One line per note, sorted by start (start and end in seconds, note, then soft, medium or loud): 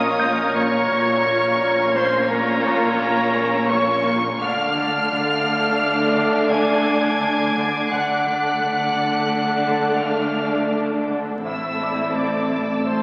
0.00 0.86 A#1 medium
0.00 0.54 A#2 medium
0.00 0.87 A#2 medium
0.00 0.20 A#3 medium
0.00 0.87 A#3 medium
0.00 0.87 C#4 medium
0.00 0.87 F4 medium
0.00 0.87 C#5 medium
0.00 0.57 D#5 medium
0.00 4.02 A#5 medium
0.00 0.54 D#6 loud
0.00 2.53 F6 soft
0.00 4.01 G#6 soft
0.19 1.94 A#3 medium
0.19 2.25 G6 medium
0.55 0.90 A#2 medium
0.55 1.97 C#5 medium
0.55 1.93 C#6 loud
0.90 4.36 A#1 medium
0.90 4.36 A#2 medium
0.90 1.24 A#2 medium
0.90 4.24 A#3 medium
0.90 4.36 A#3 medium
0.90 4.36 C#4 medium
0.90 4.24 C#4 medium
0.90 4.36 F4 medium
0.90 4.36 C#5 medium
1.26 1.60 A#2 medium
1.61 2.65 A#2 medium
1.95 2.29 A#3 medium
1.95 2.29 C5 medium
1.95 2.30 C6 medium
2.30 3.35 A#3 medium
2.30 3.72 A#4 medium
2.30 3.67 A#5 loud
2.53 4.01 E6 soft
2.66 2.99 A#2 medium
3.01 4.04 A#2 medium
3.36 3.69 A#3 medium
3.69 4.43 A#3 medium
3.69 4.16 C#5 medium
3.69 5.77 C#5 soft
3.69 4.39 C#6 loud
3.69 5.77 C#6 medium
4.05 4.43 A#2 medium
4.40 7.87 D2 medium
4.40 7.87 D3 medium
4.40 4.76 D3 medium
4.40 7.87 A3 medium
4.40 7.88 A3 medium
4.40 7.87 D4 medium
4.40 7.87 A4 medium
4.40 6.52 F5 medium
4.40 11.05 D6 medium
4.40 6.47 F6 loud
4.40 8.33 C7 medium
4.77 5.10 D3 medium
5.11 6.14 D3 medium
5.46 5.80 D4 medium
5.81 6.85 D4 soft
6.15 6.50 D3 medium
6.51 7.54 D3 medium
6.51 7.90 G#5 medium
6.51 7.88 G#6 loud
6.86 7.20 D4 soft
7.21 8.95 D4 medium
7.56 7.90 D3 medium
7.90 11.41 D2 medium
7.90 8.25 D3 medium
7.90 11.41 D3 medium
7.90 11.41 A3 medium
7.90 11.28 A3 medium
7.90 11.40 D4 medium
7.90 11.28 D4 medium
7.90 11.42 D4 medium
7.90 11.42 A4 medium
7.90 10.04 F#5 medium
7.90 10.03 F#6 medium
8.26 8.61 D3 medium
8.33 9.63 B6 medium
8.62 9.66 D3 soft
8.96 9.30 D4 soft
9.32 10.37 D4 soft
9.67 10.02 D3 medium
9.67 11.77 A4 soft
9.67 11.77 A5 soft
10.03 11.08 D3 soft
10.03 10.74 F5 medium
10.03 10.74 F6 medium
10.38 10.73 D4 soft
10.74 11.48 D4 soft
11.09 11.48 D3 soft
11.44 13.03 A1 medium
11.44 13.03 A2 soft
11.44 11.80 A2 soft
11.44 12.82 A3 soft
11.44 13.03 A3 medium
11.44 12.82 C4 soft
11.44 13.03 C4 medium
11.44 12.83 E4 soft
11.44 12.83 A4 soft
11.44 12.17 E5 medium
11.44 13.03 A5 soft
11.44 12.12 E6 medium
11.44 13.03 E6 soft
11.81 12.15 A2 soft
11.81 13.03 D5 soft
11.81 13.03 D6 soft
12.16 13.03 A2 soft
12.16 12.87 D5 medium
12.16 12.87 D6 medium
12.51 12.85 A3 soft
12.86 13.03 A3 soft
12.86 13.03 C4 soft
12.86 13.03 E4 soft
12.86 13.03 A4 soft
12.86 13.03 C5 soft
12.86 13.03 C6 soft